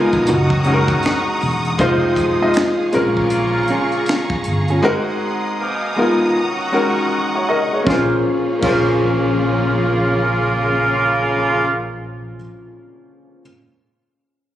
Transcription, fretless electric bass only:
0.14 A#1
0.29 F#1
1.43 E1
1.80 F1
2.43 muted fretless electric bass stroke
2.95 A#1
4.47 G1
7.88 A#1
8.64 A#1

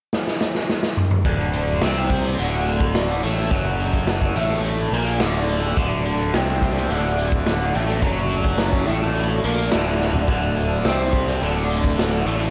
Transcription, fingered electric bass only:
1.25 D1
1.82 C2
2.39 D1
3.24 A1
3.50 F#1
4.36 A1
4.92 A#1
5.21 D1
5.77 D1
6.34 C2
6.90 D1
7.76 A1
8.02 F#1
8.88 A1
9.44 A#1
9.73 D1
10.28 D1
10.85 C2
11.42 D1
12.26 A1

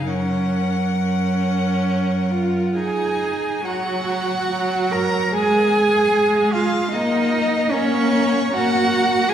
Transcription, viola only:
0.08 C#4
0.98 C#4
2.31 F4
2.77 D#4
3.65 F#3
4.50 F#3
5.32 G#3
6.11 G#3
6.93 A#3
7.71 A#3
8.55 A#3
9.30 A#3

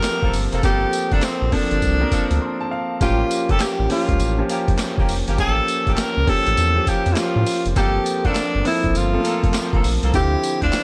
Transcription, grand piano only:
Already playing: F3 A#3 C4 G4 A4
0.63 F3 A#3 C4 A4
1.52 F3 A#3 C4 A4
2.00 F3 A#3 C4 A#4
2.42 C6
2.61 A5
2.71 F5
3.00 F3 A#3 C#4 G4
3.90 F3 A#3 C#4 G4
4.38 F3 A#3 C#4 G4
5.38 F3 A#3 C#4 G4
6.27 F3 A#3 C#4 G4
6.76 F3 A#3 C#4 G4
7.76 F3 A#3 C4 A4
8.65 F3 A#3 C4 A4
9.13 F3 A3 C4 A4
9.20 A#3
10.13 D3 F3 C4 E4

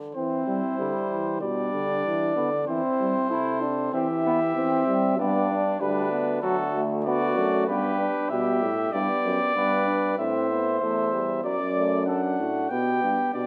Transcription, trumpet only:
0.15 C5
1.42 D5
2.68 C5
3.94 E5
5.20 D5
5.81 B4
6.42 A4
7.04 D5
7.67 B4
8.30 E5
8.93 D5
10.19 E5
10.80 E5
11.44 D5
12.06 F#5
12.70 G5
13.34 D5

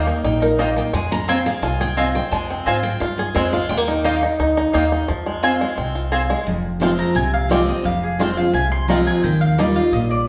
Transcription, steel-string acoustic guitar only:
0.24 G5
0.42 A#4
0.60 D#5
0.78 G5
0.95 G#5
1.12 A#5
1.29 G5
1.46 F5
1.63 G#5
1.81 G5
1.97 D#5
2.15 G5
2.32 G#5
2.83 G5
3.00 F5
3.18 G#4
3.35 C5
3.53 F5
3.69 G5
4.04 F5
4.22 D#5
6.47 F2
6.80 F3 G#3 C4 F4
7.15 C3
7.49 F3 G#3 C4 F4
7.67 C4 F4
7.84 F2
8.19 F3 G#3 C4 F4
8.36 C4 F4
8.53 C3
8.88 F3 G#3 C4 F4
9.24 D#3
9.58 D#3 G3 D#4 F4
9.76 D#4 F4
9.93 A#2

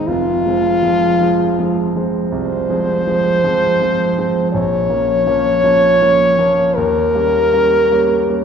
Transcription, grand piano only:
Already playing: D#3 G#3 C4
0.08 F1
0.46 F3 G#3 C4
0.83 F3 G#3 C4
1.21 F3 G#3 C4
1.59 F3 G#3 C4
1.96 F3 G#3 C4
2.32 C2
2.69 F3 G#3 C4
3.07 F3 G#3 C4
3.44 F3 G#3 C4
3.82 F3 G#3 C4
4.18 F3 G#3 C4
4.54 A#1
4.90 F3 A#3 C#4
5.27 F3 A#3 C#4
5.64 F3 A#3 C#4
6.02 F3 A#3 C#4
6.39 F3 A#3 C#4
6.77 D#2
7.15 G3 A#3 C#4
7.53 G3 A#3 C#4
7.91 G3 A#3 C#4
8.29 G3 A#3 C#4

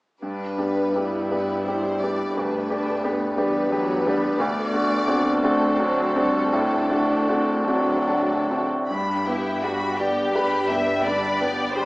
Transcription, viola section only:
0.23 G3 D4
0.58 B3
0.94 E4
2.34 A3 D4
2.68 D4
3.02 B3
3.36 G3 B3
3.70 F#3
4.05 G3
4.38 A3
5.42 A3 C4
5.79 F#3
6.16 G3
6.52 A3 D4
7.66 F#3 D4
8.89 G3 D4
9.25 B3 G4
9.63 G3 D4
9.98 B3 G4
10.34 G3 D4
10.70 B3 G4
11.06 G3 D4
11.41 B3 G4
11.77 G3 D4

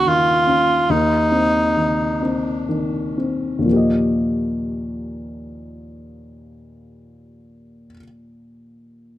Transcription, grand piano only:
Already playing: D#2 D#3 C#4
0.06 D#3
0.47 C#4
0.89 D#2
1.32 C4
1.77 D#3
2.22 C4
2.69 D#3
3.18 C4
3.59 D#2 A#2
3.66 F3 A#3
3.73 G4 D#5

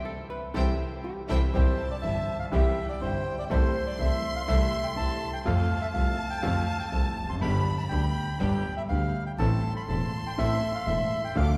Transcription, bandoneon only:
1.29 A4
1.54 C5
1.91 D5
2.02 E5
2.40 F5
2.52 E5
2.89 D5
3.02 C5
3.39 D5
3.51 C5
3.87 D5
4.00 E5
4.36 F5
4.48 E5
4.84 G5
4.97 A5
5.34 G5
5.46 F5
5.81 E5
5.94 F5
6.30 G5
6.42 F5
6.80 G5
6.93 A5
7.30 C6
7.42 B5
7.78 A5
7.89 G5
8.39 G5
8.77 E5
8.89 F5
9.26 G5
9.39 A5
9.76 B5
9.89 A5
10.27 G5
10.39 E5
10.75 F5
10.87 E5
11.25 G5
11.36 F5

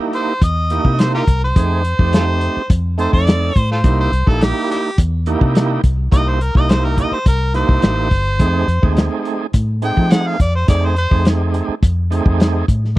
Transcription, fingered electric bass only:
0.42 E2
0.85 C3
1.27 C2
1.56 F2
1.99 F2
2.57 muted fingered electric bass stroke
2.70 F2
3.13 F2
3.56 A2
3.84 C2
4.12 C2
4.27 A#1
4.98 E2
5.41 C3
5.84 C2
6.12 C2
6.55 C2
7.11 muted fingered electric bass stroke
7.26 C2
7.69 C2
7.83 A1
8.11 G1
8.39 F2
8.68 F2
8.83 D#2
9.54 A2
9.97 F3
10.40 F2
10.68 F2
11.12 F2
11.68 muted fingered electric bass stroke
11.83 F2
12.26 F2
12.69 A2

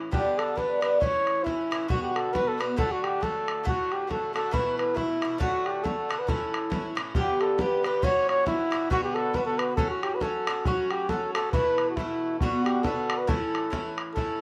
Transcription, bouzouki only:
Already playing: A2 E3 C#4 E4
0.12 G2 D3 B3 D4
0.55 G2 D3 B3 D4
0.81 G2 D3 B3 D4
1.00 A2 E3 C#4 E4
1.44 A2 E3 C#4 E4
1.71 A2 E3 C#4 E4
1.88 B2 D3 B3 F#4
2.33 B2 D3 B3 F#4
2.58 B2 D3 B3 F#4
2.76 A2 D3 A3 F#4
3.21 A2 D3 A3 F#4
3.64 A2 D3 A3 F#4
4.07 A2 D3 A3 F#4
4.33 A2 D3 A3 F#4
4.51 B2 E3 A3 E4
4.95 B2 E3 A3 E4
5.22 B2 E3 A3 E4
5.38 A2 D3 A3 F#4
5.83 A2 D3 A3 F#4
6.09 A2 D3 A3 F#4
6.27 A2 E3 C#4 E4
6.70 A2 E3 C#4 E4
6.95 A2 E3 C#4 E4
7.15 G2 D3 B3 G4
7.58 G2 D3 B3 G4
7.84 G2 D3 B3 G4
8.02 A#2 E3 C#4 F#4
8.46 A#2 E3 C#4 F#4
8.71 A#2 E3 C#4 F#4
8.90 B2 D3 B3 F#4
9.34 B2 D3 B3 F#4
9.77 A2 F#3 C#4 F#4
10.20 A2 F#3 C#4 F#4
10.47 A2 F#3 C#4 F#4
10.66 A2 F#3 C#4 F#4
11.09 A2 F#3 C#4 F#4
11.35 A2 F#3 C#4 F#4
11.53 B2 E3 A3 E4
11.97 B2 E3 A3 E4
12.42 B2 D3 B3 F#4
12.83 B2 D3 B3 F#4
13.27 A2 E3 C#4 E4
13.70 A2 E3 C#4 E4
14.16 A2 E3 C#4 E4

